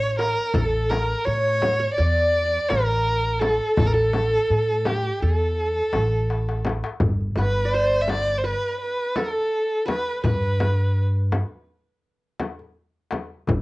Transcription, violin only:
0.00 0.15 C#5 medium
0.19 0.53 A#4 medium
0.53 0.64 A#4 medium
0.64 0.91 A4 medium
0.89 1.27 A#4 medium
1.25 1.94 C#5 loud
1.94 2.70 D5 medium
2.68 3.41 A#4 medium
3.39 3.75 A4 medium
3.76 3.88 A4 medium
3.86 3.94 A#4 medium
3.93 4.87 A4 medium
4.86 5.22 G4 medium
5.21 6.65 A4 medium
7.39 7.75 B4 medium
7.73 8.03 C5 medium
8.01 8.11 E5 medium
8.09 8.39 D5 medium
8.38 8.46 C5 medium
8.45 8.80 B4 medium
8.81 9.18 B4 medium
9.17 9.32 A#4 medium
9.32 9.87 A4 medium
9.88 10.21 B4 medium
10.25 11.01 B4 medium

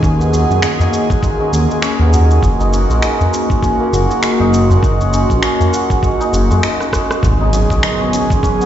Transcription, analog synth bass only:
0.03 0.45 D#2 loud
0.50 0.60 F#2 medium
1.52 1.67 D#2 medium
1.99 2.39 D#2 loud
2.43 2.85 F#1 loud
2.90 3.00 A#1 medium
3.93 4.07 F#1 medium
4.40 4.79 F#1 loud
4.83 5.25 F#1 loud
5.30 5.41 A#1 medium
6.33 6.52 F#1 medium
6.50 6.61 F#2 medium
7.23 7.65 G#1 loud
7.70 7.81 B1 medium

